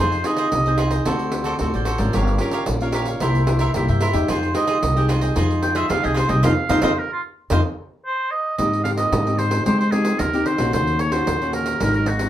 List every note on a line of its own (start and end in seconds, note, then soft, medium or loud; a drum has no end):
0.00 0.22 F2 medium
0.00 0.50 F3 soft
0.00 0.14 C4 soft
0.00 0.15 D#4 medium
0.00 0.24 F4 medium
0.00 0.15 G#4 medium
0.00 0.25 G#4 medium
0.00 0.25 C5 medium
0.00 0.27 C5 medium
0.00 0.26 D#5 medium
0.12 pandeiro soft
0.24 0.61 C4 medium
0.24 0.62 D#4 medium
0.24 0.37 F4 medium
0.24 0.62 G#4 medium
0.24 0.37 G#4 medium
0.24 0.37 C5 soft
0.24 0.79 D#5 loud
0.24 0.37 D#5 soft
0.24 pandeiro medium
0.37 0.48 F4 medium
0.37 0.48 G#4 medium
0.37 0.48 C5 medium
0.37 0.48 D#5 medium
0.37 pandeiro medium
0.52 0.98 C2 medium
0.52 1.04 C3 medium
0.52 pandeiro medium
0.66 1.03 C4 medium
0.66 1.03 D#4 medium
0.66 1.03 G#4 medium
0.66 0.78 G#4 soft
0.66 0.78 C5 soft
0.66 0.79 D#5 soft
0.66 pandeiro soft
0.78 0.91 F4 medium
0.78 0.92 G#4 medium
0.78 0.91 C5 medium
0.78 0.90 D#5 medium
0.78 pandeiro medium
0.91 1.05 G#4 soft
0.91 1.05 C5 soft
0.91 1.05 D#5 soft
0.91 pandeiro medium
1.05 1.52 D2 medium
1.05 1.58 D3 medium
1.05 1.56 C4 medium
1.05 1.44 F#4 medium
1.05 1.56 F#4 medium
1.05 1.44 A4 medium
1.05 1.56 A4 medium
1.05 1.45 C5 medium
1.05 1.45 D5 medium
1.05 pandeiro medium
1.19 pandeiro soft
1.32 pandeiro medium
1.44 1.55 F#4 medium
1.44 1.55 A4 medium
1.44 1.56 C5 medium
1.44 1.56 D5 medium
1.44 pandeiro medium
1.59 1.72 D2 medium
1.59 2.12 A2 medium
1.59 1.86 C4 medium
1.59 1.73 F#4 soft
1.59 1.86 F#4 medium
1.59 1.73 A4 soft
1.59 1.86 A4 medium
1.59 1.73 C5 soft
1.59 1.73 D5 soft
1.59 pandeiro medium
1.74 1.97 A1 medium
1.74 1.86 A4 soft
1.74 1.86 C5 soft
1.74 1.86 D5 soft
1.74 pandeiro soft
1.85 1.99 F#4 medium
1.85 1.99 A4 medium
1.85 1.99 C5 medium
1.85 1.98 D5 medium
1.85 pandeiro medium
1.98 2.11 G#1 medium
1.98 2.36 C#4 medium
1.98 2.36 F4 medium
1.98 2.13 A4 soft
1.98 2.36 A#4 medium
1.98 2.13 C5 soft
1.98 2.12 D5 soft
1.98 pandeiro medium
2.13 2.37 G1 loud
2.13 2.65 G3 medium
2.13 2.39 G4 medium
2.13 2.40 A#4 medium
2.13 2.41 C#5 medium
2.13 2.41 F5 medium
2.13 pandeiro medium
2.27 pandeiro soft
2.38 2.77 C#4 medium
2.38 2.77 F4 medium
2.38 2.52 G4 soft
2.38 2.77 A#4 medium
2.38 2.52 A#4 soft
2.38 2.53 C#5 medium
2.38 2.53 F5 medium
2.38 pandeiro medium
2.51 2.63 G4 medium
2.51 2.63 A#4 medium
2.51 2.63 C#5 medium
2.51 2.63 F5 medium
2.51 pandeiro medium
2.66 3.14 A#1 medium
2.66 3.19 G3 medium
2.66 pandeiro medium
2.80 3.18 C#4 medium
2.80 3.18 F4 medium
2.80 3.18 A#4 medium
2.80 2.93 A#4 soft
2.80 2.94 C#5 soft
2.80 2.94 F5 medium
2.80 pandeiro soft
2.92 3.07 G4 medium
2.92 3.07 A#4 medium
2.92 3.06 C#5 medium
2.92 3.05 F5 medium
2.92 pandeiro medium
3.05 3.21 A#4 soft
3.05 3.20 C#5 soft
3.05 3.20 F5 soft
3.05 pandeiro medium
3.20 3.67 C2 medium
3.20 3.73 C3 medium
3.20 3.44 A#3 medium
3.20 3.59 E4 medium
3.20 3.44 E4 medium
3.20 3.45 G4 medium
3.20 3.59 A#4 medium
3.20 3.60 C5 medium
3.20 3.60 E5 medium
3.20 pandeiro medium
3.35 pandeiro soft
3.47 3.71 A#3 medium
3.47 3.71 E4 medium
3.47 3.71 G4 medium
3.47 pandeiro medium
3.59 3.70 E4 medium
3.59 3.70 A#4 medium
3.59 3.71 C5 medium
3.59 3.70 E5 medium
3.59 pandeiro medium
3.74 3.87 C2 medium
3.74 4.27 G2 medium
3.74 4.11 A#3 medium
3.74 3.88 E4 soft
3.74 4.12 E4 medium
3.74 4.12 G4 medium
3.74 3.88 A#4 medium
3.74 3.88 C5 soft
3.74 3.88 E5 medium
3.74 pandeiro medium
3.88 4.12 G2 medium
3.88 4.01 A#4 soft
3.88 4.01 C5 soft
3.88 4.01 E5 soft
3.88 pandeiro soft
4.01 4.14 E4 medium
4.01 4.14 A#4 medium
4.01 4.13 C5 medium
4.01 4.12 E5 medium
4.01 pandeiro medium
4.13 4.26 E2 medium
4.13 4.51 G#3 medium
4.13 4.51 D#4 medium
4.13 4.51 G4 medium
4.13 4.28 A#4 soft
4.13 4.28 C5 soft
4.13 4.27 E5 soft
4.13 pandeiro medium
4.28 4.52 F2 loud
4.28 4.80 F3 medium
4.28 4.53 F4 medium
4.28 4.54 G#4 medium
4.28 4.54 C5 medium
4.28 4.55 C5 medium
4.28 4.55 D#5 medium
4.28 pandeiro medium
4.43 pandeiro soft
4.54 4.92 G#3 medium
4.54 4.92 D#4 medium
4.54 4.66 F4 soft
4.54 4.92 G4 medium
4.54 4.66 G#4 medium
4.54 4.66 C5 medium
4.54 5.06 D#5 medium
4.54 4.67 D#5 medium
4.54 pandeiro medium
4.67 4.77 F4 medium
4.67 4.77 G#4 medium
4.67 4.78 C5 medium
4.67 4.78 D#5 medium
4.67 pandeiro medium
4.82 5.29 C2 medium
4.82 5.34 C3 soft
4.82 pandeiro medium
4.96 5.32 G#3 medium
4.96 5.32 D#4 medium
4.96 5.33 G4 medium
4.96 5.08 G#4 soft
4.96 5.09 C5 soft
4.96 5.09 D#5 soft
4.96 pandeiro soft
5.09 5.22 F4 medium
5.09 5.22 G#4 medium
5.09 5.21 C5 medium
5.09 5.20 D#5 medium
5.09 pandeiro medium
5.21 5.36 G#4 soft
5.21 5.35 C5 soft
5.21 5.35 D#5 medium
5.21 pandeiro medium
5.36 5.82 F2 medium
5.36 5.88 F3 medium
5.36 5.86 G#3 medium
5.36 5.86 D#4 medium
5.36 5.74 F4 medium
5.36 5.74 G#4 medium
5.36 5.74 C5 medium
5.36 5.75 D#5 medium
5.36 pandeiro medium
5.50 pandeiro soft
5.62 5.78 G5 medium
5.62 pandeiro medium
5.75 5.85 F4 medium
5.75 5.85 G#4 medium
5.75 5.85 C5 medium
5.75 5.85 D#5 medium
5.75 5.92 E5 medium
5.75 pandeiro medium
5.89 6.02 F2 medium
5.89 6.42 C3 medium
5.89 6.27 G#3 medium
5.89 6.27 D#4 medium
5.89 6.02 F4 medium
5.89 6.27 G4 medium
5.89 6.03 G#4 soft
5.89 6.03 C5 medium
5.89 6.02 D#5 soft
5.89 6.06 F5 loud
5.89 pandeiro medium
6.03 6.27 C2 medium
6.03 6.14 G#4 soft
6.03 6.19 G#4 medium
6.03 6.14 C5 soft
6.03 6.15 D#5 soft
6.03 pandeiro soft
6.14 6.28 F4 medium
6.14 6.29 G#4 medium
6.14 6.28 C5 medium
6.14 6.31 C5 medium
6.14 6.27 D#5 medium
6.14 pandeiro medium
6.28 6.41 C2 loud
6.28 6.44 G#3 medium
6.28 6.43 D#4 medium
6.28 6.44 G4 medium
6.28 6.42 G#4 soft
6.28 6.42 C5 soft
6.28 6.42 D#5 soft
6.28 6.46 D#5 medium
6.28 pandeiro medium
6.43 6.54 F2 loud
6.43 6.53 C4 medium
6.43 6.53 D#4 medium
6.43 6.53 F4 medium
6.43 6.52 C5 medium
6.43 6.52 D#5 medium
6.43 6.52 F5 medium
6.43 6.85 F5 loud
6.43 pandeiro medium
6.69 6.80 F2 medium
6.69 6.79 C4 medium
6.69 6.79 D#4 loud
6.69 6.79 F4 medium
6.69 6.79 C5 medium
6.69 6.79 D#5 medium
6.69 6.79 F5 loud
6.69 pandeiro medium
6.82 6.93 F2 loud
6.82 6.92 C4 loud
6.82 6.92 D#4 loud
6.82 6.92 F4 loud
6.82 7.00 C5 medium
6.82 6.92 C5 medium
6.82 6.92 D#5 medium
6.82 6.92 F5 loud
6.82 pandeiro medium
6.99 7.12 A#4 medium
7.13 7.20 F4 medium
7.50 7.61 F2 medium
7.50 7.60 C4 loud
7.50 7.60 D#4 medium
7.50 7.60 F4 medium
7.50 7.60 C5 loud
7.50 7.60 D#5 medium
7.50 7.60 F5 medium
7.50 pandeiro medium
8.06 8.32 C5 medium
8.31 8.57 D#5 medium
8.58 9.05 G#2 medium
8.58 9.10 G#3 medium
8.58 8.82 C4 medium
8.58 8.82 D#4 medium
8.58 8.82 G4 medium
8.58 8.83 D#5 medium
8.58 pandeiro medium
8.73 pandeiro soft
8.84 9.21 C4 medium
8.84 9.21 D#4 medium
8.84 9.22 G4 medium
8.84 8.90 F5 medium
8.84 pandeiro medium
8.97 9.40 D#5 medium
8.97 pandeiro medium
9.12 9.58 G#2 loud
9.12 9.63 D#3 medium
9.12 pandeiro medium
9.26 9.62 C4 medium
9.26 9.62 D#4 medium
9.26 9.63 G4 medium
9.26 pandeiro soft
9.38 9.65 C5 medium
9.38 pandeiro medium
9.51 pandeiro medium
9.65 10.17 G#3 medium
9.65 10.12 G#3 medium
9.65 9.82 C4 medium
9.65 9.82 D#4 medium
9.65 9.82 G4 medium
9.65 9.79 C5 medium
9.65 pandeiro medium
9.79 9.93 C5 medium
9.79 pandeiro soft
9.91 10.18 C4 medium
9.91 10.18 D#4 medium
9.91 10.18 G4 medium
9.91 10.21 G#4 medium
9.91 pandeiro medium
10.05 pandeiro medium
10.19 10.43 D#2 medium
10.19 10.71 D#3 medium
10.19 10.48 A#4 medium
10.19 pandeiro medium
10.33 10.56 C4 medium
10.33 10.56 D#4 medium
10.33 10.57 G4 medium
10.33 pandeiro soft
10.46 10.73 C5 medium
10.46 pandeiro medium
10.58 10.75 A#1 medium
10.58 10.96 A#3 medium
10.58 10.96 C#4 medium
10.58 10.96 F#4 medium
10.58 pandeiro medium
10.73 11.19 D#2 medium
10.73 11.25 D#3 medium
10.73 11.02 C5 medium
10.73 pandeiro medium
10.87 pandeiro soft
10.99 11.14 C#5 medium
10.99 pandeiro medium
11.12 11.36 A#3 medium
11.12 11.36 C#4 medium
11.12 11.36 F#4 medium
11.12 11.54 C5 medium
11.12 pandeiro medium
11.27 11.73 D#2 loud
11.27 11.79 A#2 medium
11.27 pandeiro medium
11.41 11.77 A#3 medium
11.41 11.78 C#4 medium
11.41 11.78 F#4 medium
11.41 pandeiro soft
11.53 11.79 A#4 medium
11.53 pandeiro medium
11.66 pandeiro medium
11.80 12.26 G#1 loud
11.80 12.29 G#2 medium
11.80 12.07 F#3 medium
11.80 12.07 C4 medium
11.80 12.07 D#4 medium
11.80 11.94 A#4 loud
11.80 pandeiro medium
11.94 12.09 A#4 medium
11.94 pandeiro soft
12.06 12.29 F#4 medium
12.06 pandeiro medium
12.19 12.29 F#3 medium
12.19 12.29 C4 medium
12.19 12.29 D#4 medium
12.19 pandeiro medium